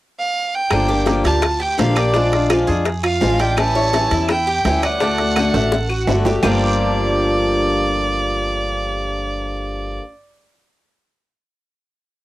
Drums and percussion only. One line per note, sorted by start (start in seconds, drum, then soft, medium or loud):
0.70 high bongo medium
0.70 high timbale medium
0.70 long guiro medium
0.70 claves medium
0.88 high bongo soft
1.06 high bongo medium
1.06 high timbale medium
1.06 low timbale medium
1.06 short guiro medium
1.24 high bongo soft
1.24 high timbale medium
1.24 short guiro medium
1.42 high bongo medium
1.42 high timbale medium
1.42 long guiro medium
1.42 claves medium
1.78 high bongo soft
1.78 low bongo medium
1.78 high timbale medium
1.78 low timbale medium
1.78 short guiro medium
1.95 high bongo soft
1.95 high timbale medium
1.95 short guiro medium
1.95 claves medium
2.14 high bongo medium
2.14 long guiro medium
2.32 high bongo soft
2.32 high timbale medium
2.50 high bongo medium
2.50 high timbale medium
2.50 low timbale medium
2.50 short guiro medium
2.50 claves medium
2.67 high bongo soft
2.67 short guiro medium
2.86 high bongo medium
2.86 high timbale medium
2.86 long guiro medium
3.04 high timbale medium
3.04 claves medium
3.21 high bongo soft
3.21 low bongo medium
3.21 low timbale medium
3.21 short guiro medium
3.39 high bongo soft
3.39 high timbale medium
3.39 short guiro medium
3.57 high bongo medium
3.57 high timbale medium
3.57 long guiro medium
3.57 claves medium
3.75 high bongo soft
3.93 high bongo medium
3.93 high timbale medium
3.93 low timbale medium
3.93 short guiro medium
4.11 high bongo soft
4.11 high timbale medium
4.11 short guiro medium
4.28 high bongo medium
4.28 high timbale medium
4.28 long guiro medium
4.28 claves medium
4.64 high bongo soft
4.64 low bongo medium
4.64 high timbale medium
4.64 low timbale medium
4.64 short guiro medium
4.82 high bongo soft
4.82 high timbale medium
4.82 short guiro medium
4.82 claves medium
5.00 high bongo medium
5.00 long guiro medium
5.18 high bongo soft
5.18 high timbale medium
5.36 high bongo medium
5.36 high timbale medium
5.36 low timbale medium
5.36 short guiro medium
5.36 claves medium
5.54 high bongo soft
5.54 high timbale medium
5.54 short guiro medium
5.72 high bongo medium
5.72 long guiro medium
5.89 claves medium
6.07 low bongo medium
6.07 low timbale medium
6.07 short guiro medium
6.25 low bongo medium
6.25 low timbale medium
6.25 short guiro medium
6.43 low bongo medium
6.43 low timbale medium
6.43 long guiro medium
6.43 claves loud